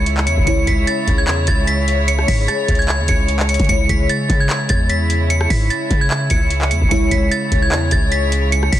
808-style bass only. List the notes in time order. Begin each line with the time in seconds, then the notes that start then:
Already playing: C#2
0.27 E2
0.37 C#2
0.47 C#2
0.67 C#2
1.07 C#2
1.28 E2
1.48 C#2
2.28 G#2
2.68 C#2
2.99 D#2
3.09 C#2
3.60 C#3
3.69 C#2
3.89 C#2
4.29 C#3
4.70 E2
5.50 G#2
5.90 C#3
6.31 C#2
6.71 E2
6.82 C#2
6.91 C#2
7.11 C#2
7.52 C#2
7.72 E2
7.92 C#2
8.72 G#2